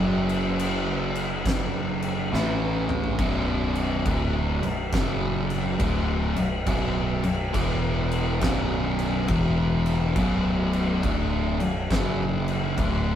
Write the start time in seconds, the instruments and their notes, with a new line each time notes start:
Already playing: picked electric bass F#1, distorted electric guitar F#2 C#3 F#3
0.29 crash
0.59 crash
1.15 crash
1.46 kick, snare, crash
2.02 crash
2.32 picked electric bass A1, distorted electric guitar A2 E3 A3, snare
2.89 mid tom
3.04 floor tom
3.18 picked electric bass B0, distorted electric guitar B1 F#2 B2, kick, crash
3.75 crash
4.05 picked electric bass D1, distorted electric guitar D2 A2 D3, kick, crash
4.62 picked electric bass B0, distorted electric guitar B1 F#2, crash
4.92 picked electric bass F#1, distorted electric guitar F#2 C#3 F#3, kick, snare, crash
5.50 crash
5.78 picked electric bass D1, distorted electric guitar D2 A2 D3, kick, crash
6.36 picked electric bass B0, distorted electric guitar B1 F#2, crash
6.66 picked electric bass B0, distorted electric guitar B1 F#2 B2, kick, crash
7.23 picked electric bass B0, distorted electric guitar B1 F#2, crash
7.53 picked electric bass E1, distorted electric guitar E2 B2 E3, kick, crash
8.12 crash
8.41 picked electric bass B0, distorted electric guitar B1 F#2 B2, kick, snare, crash
8.99 crash
9.28 picked electric bass E1, distorted electric guitar E2 B2 E3, kick, crash
9.86 crash
10.16 picked electric bass B0, distorted electric guitar B1 F#2 B2, kick, crash
10.73 crash
11.03 picked electric bass D1, distorted electric guitar D2 A2 D3, kick, crash
11.60 picked electric bass B0, distorted electric guitar B1 F#2, crash
11.90 picked electric bass F#1, distorted electric guitar F#2 C#3 F#3, kick, snare, crash
12.48 crash
12.78 picked electric bass D1, distorted electric guitar D2 A2 D3, kick, crash